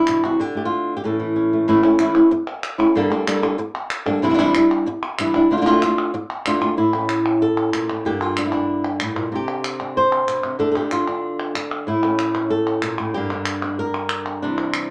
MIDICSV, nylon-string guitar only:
0, 0, Header, 1, 3, 480
1, 0, Start_track
1, 0, Tempo, 318810
1, 601, Time_signature, 4, 2, 24, 8
1, 22439, End_track
2, 0, Start_track
2, 0, Title_t, "Nylon-string guitar"
2, 0, Program_c, 0, 24
2, 0, Note_on_c, 0, 52, 57
2, 0, Note_on_c, 0, 55, 42
2, 0, Note_on_c, 0, 62, 78
2, 0, Note_on_c, 0, 64, 89
2, 124, Note_on_c, 0, 47, 61
2, 348, Note_off_c, 0, 47, 0
2, 354, Note_on_c, 0, 48, 54
2, 365, Note_off_c, 0, 62, 0
2, 365, Note_off_c, 0, 64, 0
2, 374, Note_on_c, 0, 66, 76
2, 566, Note_off_c, 0, 52, 0
2, 596, Note_on_c, 0, 50, 75
2, 597, Note_off_c, 0, 48, 0
2, 601, Note_off_c, 0, 55, 0
2, 612, Note_off_c, 0, 66, 0
2, 612, Note_on_c, 0, 67, 83
2, 826, Note_on_c, 0, 57, 56
2, 839, Note_off_c, 0, 67, 0
2, 857, Note_on_c, 0, 67, 61
2, 961, Note_off_c, 0, 67, 0
2, 984, Note_on_c, 0, 65, 78
2, 1448, Note_off_c, 0, 65, 0
2, 1454, Note_on_c, 0, 67, 78
2, 1525, Note_off_c, 0, 57, 0
2, 1559, Note_off_c, 0, 50, 0
2, 1561, Note_on_c, 0, 45, 67
2, 1568, Note_off_c, 0, 67, 0
2, 1570, Note_on_c, 0, 52, 42
2, 1580, Note_on_c, 0, 57, 44
2, 1583, Note_on_c, 0, 69, 77
2, 1591, Note_on_c, 0, 61, 42
2, 1782, Note_off_c, 0, 52, 0
2, 1800, Note_on_c, 0, 52, 60
2, 2028, Note_off_c, 0, 61, 0
2, 2046, Note_on_c, 0, 61, 44
2, 2289, Note_off_c, 0, 57, 0
2, 2305, Note_on_c, 0, 57, 44
2, 2492, Note_off_c, 0, 52, 0
2, 2495, Note_off_c, 0, 61, 0
2, 2505, Note_off_c, 0, 57, 0
2, 2508, Note_off_c, 0, 45, 0
2, 2526, Note_on_c, 0, 45, 84
2, 2529, Note_on_c, 0, 52, 77
2, 2533, Note_off_c, 0, 69, 0
2, 2539, Note_on_c, 0, 57, 77
2, 2541, Note_on_c, 0, 61, 81
2, 2542, Note_on_c, 0, 64, 80
2, 2738, Note_off_c, 0, 64, 0
2, 2754, Note_off_c, 0, 45, 0
2, 2754, Note_off_c, 0, 61, 0
2, 2756, Note_off_c, 0, 52, 0
2, 2756, Note_on_c, 0, 64, 55
2, 2761, Note_off_c, 0, 57, 0
2, 2772, Note_on_c, 0, 61, 53
2, 2781, Note_on_c, 0, 57, 45
2, 2989, Note_off_c, 0, 64, 0
2, 2992, Note_off_c, 0, 57, 0
2, 2997, Note_off_c, 0, 61, 0
2, 2997, Note_on_c, 0, 52, 59
2, 3010, Note_on_c, 0, 57, 56
2, 3017, Note_on_c, 0, 61, 59
2, 3022, Note_on_c, 0, 64, 64
2, 3216, Note_off_c, 0, 64, 0
2, 3221, Note_off_c, 0, 61, 0
2, 3230, Note_off_c, 0, 52, 0
2, 3234, Note_on_c, 0, 64, 50
2, 3236, Note_off_c, 0, 57, 0
2, 3239, Note_on_c, 0, 61, 50
2, 3253, Note_on_c, 0, 57, 46
2, 3466, Note_off_c, 0, 57, 0
2, 3468, Note_off_c, 0, 64, 0
2, 3471, Note_off_c, 0, 61, 0
2, 4189, Note_on_c, 0, 64, 53
2, 4197, Note_on_c, 0, 61, 46
2, 4217, Note_on_c, 0, 57, 47
2, 4426, Note_off_c, 0, 64, 0
2, 4430, Note_off_c, 0, 61, 0
2, 4440, Note_off_c, 0, 57, 0
2, 4444, Note_on_c, 0, 43, 76
2, 4450, Note_on_c, 0, 55, 84
2, 4451, Note_on_c, 0, 50, 82
2, 4465, Note_on_c, 0, 58, 89
2, 4468, Note_on_c, 0, 69, 95
2, 4469, Note_on_c, 0, 62, 92
2, 4655, Note_off_c, 0, 69, 0
2, 4669, Note_off_c, 0, 62, 0
2, 4673, Note_off_c, 0, 43, 0
2, 4673, Note_on_c, 0, 69, 55
2, 4676, Note_off_c, 0, 55, 0
2, 4677, Note_off_c, 0, 50, 0
2, 4677, Note_off_c, 0, 58, 0
2, 4687, Note_on_c, 0, 62, 46
2, 4695, Note_on_c, 0, 58, 52
2, 4701, Note_on_c, 0, 55, 47
2, 4903, Note_off_c, 0, 55, 0
2, 4906, Note_off_c, 0, 58, 0
2, 4908, Note_off_c, 0, 69, 0
2, 4915, Note_off_c, 0, 62, 0
2, 4921, Note_on_c, 0, 55, 61
2, 4924, Note_on_c, 0, 58, 65
2, 4936, Note_on_c, 0, 62, 62
2, 4944, Note_on_c, 0, 69, 67
2, 5136, Note_off_c, 0, 69, 0
2, 5148, Note_off_c, 0, 62, 0
2, 5152, Note_off_c, 0, 55, 0
2, 5153, Note_off_c, 0, 58, 0
2, 5154, Note_on_c, 0, 69, 57
2, 5166, Note_on_c, 0, 62, 52
2, 5172, Note_on_c, 0, 58, 46
2, 5187, Note_on_c, 0, 55, 49
2, 5377, Note_off_c, 0, 55, 0
2, 5386, Note_off_c, 0, 62, 0
2, 5388, Note_off_c, 0, 58, 0
2, 5388, Note_off_c, 0, 69, 0
2, 6109, Note_on_c, 0, 69, 59
2, 6124, Note_on_c, 0, 62, 59
2, 6138, Note_on_c, 0, 58, 51
2, 6139, Note_on_c, 0, 55, 48
2, 6345, Note_off_c, 0, 69, 0
2, 6353, Note_off_c, 0, 62, 0
2, 6354, Note_off_c, 0, 55, 0
2, 6357, Note_on_c, 0, 48, 77
2, 6360, Note_off_c, 0, 58, 0
2, 6366, Note_on_c, 0, 52, 82
2, 6372, Note_on_c, 0, 55, 84
2, 6381, Note_on_c, 0, 62, 83
2, 6386, Note_on_c, 0, 64, 92
2, 6444, Note_off_c, 0, 52, 0
2, 6455, Note_off_c, 0, 55, 0
2, 6459, Note_off_c, 0, 62, 0
2, 6462, Note_on_c, 0, 52, 52
2, 6468, Note_off_c, 0, 64, 0
2, 6473, Note_on_c, 0, 55, 60
2, 6477, Note_on_c, 0, 62, 58
2, 6486, Note_on_c, 0, 64, 60
2, 6519, Note_off_c, 0, 52, 0
2, 6521, Note_off_c, 0, 62, 0
2, 6529, Note_off_c, 0, 55, 0
2, 6536, Note_off_c, 0, 64, 0
2, 6537, Note_on_c, 0, 52, 72
2, 6539, Note_on_c, 0, 62, 80
2, 6547, Note_on_c, 0, 55, 76
2, 6554, Note_on_c, 0, 64, 76
2, 6584, Note_off_c, 0, 48, 0
2, 6587, Note_off_c, 0, 52, 0
2, 6592, Note_off_c, 0, 55, 0
2, 6597, Note_off_c, 0, 62, 0
2, 6598, Note_off_c, 0, 64, 0
2, 6602, Note_on_c, 0, 48, 95
2, 6605, Note_on_c, 0, 52, 90
2, 6610, Note_on_c, 0, 55, 90
2, 6615, Note_on_c, 0, 62, 93
2, 6616, Note_on_c, 0, 64, 98
2, 6828, Note_off_c, 0, 64, 0
2, 6832, Note_off_c, 0, 48, 0
2, 6834, Note_off_c, 0, 52, 0
2, 6836, Note_off_c, 0, 55, 0
2, 6838, Note_off_c, 0, 62, 0
2, 6847, Note_on_c, 0, 64, 58
2, 6861, Note_on_c, 0, 62, 55
2, 6877, Note_on_c, 0, 55, 52
2, 7314, Note_off_c, 0, 64, 0
2, 7315, Note_off_c, 0, 55, 0
2, 7321, Note_off_c, 0, 62, 0
2, 7812, Note_on_c, 0, 52, 57
2, 7824, Note_on_c, 0, 55, 63
2, 7827, Note_on_c, 0, 62, 65
2, 7840, Note_on_c, 0, 64, 61
2, 8035, Note_off_c, 0, 64, 0
2, 8037, Note_off_c, 0, 52, 0
2, 8042, Note_off_c, 0, 55, 0
2, 8044, Note_off_c, 0, 62, 0
2, 8053, Note_on_c, 0, 64, 52
2, 8067, Note_on_c, 0, 62, 51
2, 8079, Note_on_c, 0, 55, 47
2, 8277, Note_off_c, 0, 64, 0
2, 8284, Note_off_c, 0, 62, 0
2, 8290, Note_off_c, 0, 55, 0
2, 8291, Note_on_c, 0, 50, 79
2, 8303, Note_on_c, 0, 57, 89
2, 8312, Note_on_c, 0, 62, 79
2, 8324, Note_on_c, 0, 65, 81
2, 8368, Note_off_c, 0, 50, 0
2, 8372, Note_off_c, 0, 57, 0
2, 8379, Note_off_c, 0, 62, 0
2, 8379, Note_off_c, 0, 65, 0
2, 8386, Note_on_c, 0, 50, 54
2, 8390, Note_on_c, 0, 57, 58
2, 8397, Note_on_c, 0, 62, 58
2, 8397, Note_on_c, 0, 65, 55
2, 8436, Note_off_c, 0, 50, 0
2, 8440, Note_off_c, 0, 57, 0
2, 8441, Note_off_c, 0, 62, 0
2, 8448, Note_off_c, 0, 65, 0
2, 8454, Note_on_c, 0, 50, 61
2, 8458, Note_on_c, 0, 57, 65
2, 8459, Note_on_c, 0, 62, 72
2, 8466, Note_on_c, 0, 65, 72
2, 8501, Note_off_c, 0, 50, 0
2, 8506, Note_off_c, 0, 57, 0
2, 8511, Note_off_c, 0, 62, 0
2, 8518, Note_off_c, 0, 65, 0
2, 8519, Note_on_c, 0, 50, 79
2, 8525, Note_on_c, 0, 57, 89
2, 8529, Note_on_c, 0, 62, 87
2, 8536, Note_on_c, 0, 65, 97
2, 8750, Note_off_c, 0, 50, 0
2, 8753, Note_off_c, 0, 57, 0
2, 8755, Note_off_c, 0, 62, 0
2, 8758, Note_off_c, 0, 65, 0
2, 8777, Note_on_c, 0, 65, 58
2, 8787, Note_on_c, 0, 62, 51
2, 8801, Note_on_c, 0, 57, 49
2, 9224, Note_off_c, 0, 57, 0
2, 9227, Note_off_c, 0, 62, 0
2, 9238, Note_off_c, 0, 65, 0
2, 9719, Note_on_c, 0, 50, 52
2, 9738, Note_on_c, 0, 57, 61
2, 9744, Note_on_c, 0, 62, 60
2, 9750, Note_on_c, 0, 65, 62
2, 9934, Note_off_c, 0, 65, 0
2, 9949, Note_off_c, 0, 50, 0
2, 9951, Note_off_c, 0, 62, 0
2, 9952, Note_on_c, 0, 65, 58
2, 9959, Note_off_c, 0, 57, 0
2, 9969, Note_on_c, 0, 62, 44
2, 9980, Note_on_c, 0, 57, 43
2, 10186, Note_off_c, 0, 65, 0
2, 10195, Note_off_c, 0, 62, 0
2, 10198, Note_on_c, 0, 45, 68
2, 10200, Note_off_c, 0, 57, 0
2, 10206, Note_on_c, 0, 64, 76
2, 10454, Note_on_c, 0, 57, 39
2, 10464, Note_on_c, 0, 61, 36
2, 11160, Note_off_c, 0, 64, 0
2, 11171, Note_on_c, 0, 69, 93
2, 11639, Note_off_c, 0, 45, 0
2, 11646, Note_on_c, 0, 46, 51
2, 11882, Note_off_c, 0, 46, 0
2, 11894, Note_on_c, 0, 45, 49
2, 12097, Note_off_c, 0, 57, 0
2, 12102, Note_off_c, 0, 61, 0
2, 12122, Note_on_c, 0, 43, 71
2, 12125, Note_off_c, 0, 69, 0
2, 12126, Note_off_c, 0, 45, 0
2, 12135, Note_on_c, 0, 67, 86
2, 12136, Note_on_c, 0, 50, 43
2, 12143, Note_on_c, 0, 58, 45
2, 12153, Note_on_c, 0, 62, 45
2, 12374, Note_off_c, 0, 67, 0
2, 12374, Note_on_c, 0, 65, 73
2, 12617, Note_off_c, 0, 62, 0
2, 12623, Note_on_c, 0, 62, 61
2, 12711, Note_off_c, 0, 65, 0
2, 12730, Note_on_c, 0, 64, 55
2, 12820, Note_off_c, 0, 62, 0
2, 12841, Note_on_c, 0, 62, 59
2, 13301, Note_off_c, 0, 64, 0
2, 13561, Note_on_c, 0, 45, 56
2, 13575, Note_off_c, 0, 62, 0
2, 13783, Note_off_c, 0, 45, 0
2, 13789, Note_on_c, 0, 46, 56
2, 14012, Note_off_c, 0, 43, 0
2, 14022, Note_off_c, 0, 46, 0
2, 14022, Note_off_c, 0, 58, 0
2, 14028, Note_on_c, 0, 48, 70
2, 14084, Note_on_c, 0, 67, 85
2, 14766, Note_on_c, 0, 62, 42
2, 15005, Note_off_c, 0, 67, 0
2, 15011, Note_on_c, 0, 72, 96
2, 15467, Note_off_c, 0, 48, 0
2, 15473, Note_on_c, 0, 47, 57
2, 15703, Note_off_c, 0, 47, 0
2, 15709, Note_on_c, 0, 48, 56
2, 15927, Note_off_c, 0, 50, 0
2, 15934, Note_off_c, 0, 62, 0
2, 15943, Note_on_c, 0, 50, 71
2, 15948, Note_off_c, 0, 72, 0
2, 15954, Note_off_c, 0, 48, 0
2, 15954, Note_on_c, 0, 69, 89
2, 15960, Note_on_c, 0, 57, 45
2, 15969, Note_on_c, 0, 62, 45
2, 16115, Note_off_c, 0, 69, 0
2, 16133, Note_on_c, 0, 69, 63
2, 16196, Note_off_c, 0, 69, 0
2, 16210, Note_on_c, 0, 67, 77
2, 16438, Note_off_c, 0, 67, 0
2, 16444, Note_on_c, 0, 65, 63
2, 16665, Note_off_c, 0, 62, 0
2, 16683, Note_on_c, 0, 62, 39
2, 17377, Note_off_c, 0, 62, 0
2, 17395, Note_on_c, 0, 62, 41
2, 17402, Note_off_c, 0, 65, 0
2, 17849, Note_off_c, 0, 62, 0
2, 17869, Note_on_c, 0, 45, 73
2, 17873, Note_off_c, 0, 50, 0
2, 17883, Note_on_c, 0, 64, 85
2, 18120, Note_off_c, 0, 57, 0
2, 18126, Note_on_c, 0, 57, 42
2, 18133, Note_on_c, 0, 61, 44
2, 18583, Note_off_c, 0, 61, 0
2, 18601, Note_on_c, 0, 61, 40
2, 18820, Note_off_c, 0, 64, 0
2, 18826, Note_on_c, 0, 69, 88
2, 19303, Note_off_c, 0, 45, 0
2, 19309, Note_on_c, 0, 46, 55
2, 19552, Note_off_c, 0, 46, 0
2, 19558, Note_on_c, 0, 45, 57
2, 19773, Note_off_c, 0, 61, 0
2, 19775, Note_off_c, 0, 57, 0
2, 19782, Note_off_c, 0, 69, 0
2, 19788, Note_on_c, 0, 67, 91
2, 19800, Note_off_c, 0, 45, 0
2, 19809, Note_on_c, 0, 43, 72
2, 19818, Note_on_c, 0, 50, 51
2, 19826, Note_on_c, 0, 58, 46
2, 19834, Note_on_c, 0, 62, 48
2, 20036, Note_off_c, 0, 58, 0
2, 20054, Note_on_c, 0, 58, 43
2, 20060, Note_off_c, 0, 62, 0
2, 20066, Note_on_c, 0, 62, 46
2, 20538, Note_off_c, 0, 62, 0
2, 20544, Note_on_c, 0, 62, 41
2, 20755, Note_off_c, 0, 67, 0
2, 20763, Note_on_c, 0, 70, 92
2, 21698, Note_off_c, 0, 43, 0
2, 21699, Note_off_c, 0, 62, 0
2, 21700, Note_off_c, 0, 58, 0
2, 21717, Note_on_c, 0, 62, 85
2, 21723, Note_off_c, 0, 70, 0
2, 21723, Note_on_c, 0, 48, 74
2, 21730, Note_off_c, 0, 50, 0
2, 21739, Note_on_c, 0, 52, 50
2, 21746, Note_on_c, 0, 55, 50
2, 22439, Note_off_c, 0, 48, 0
2, 22439, Note_off_c, 0, 52, 0
2, 22439, Note_off_c, 0, 55, 0
2, 22439, Note_off_c, 0, 62, 0
2, 22439, End_track
3, 0, Start_track
3, 0, Title_t, "Muted nylon-string guitar strokes"
3, 3476, Note_on_c, 9, 29, 66
3, 3626, Note_off_c, 9, 29, 0
3, 5392, Note_on_c, 9, 29, 69
3, 5542, Note_off_c, 9, 29, 0
3, 7323, Note_on_c, 9, 29, 66
3, 7473, Note_off_c, 9, 29, 0
3, 9242, Note_on_c, 9, 29, 60
3, 9392, Note_off_c, 9, 29, 0
3, 22439, End_track
0, 0, End_of_file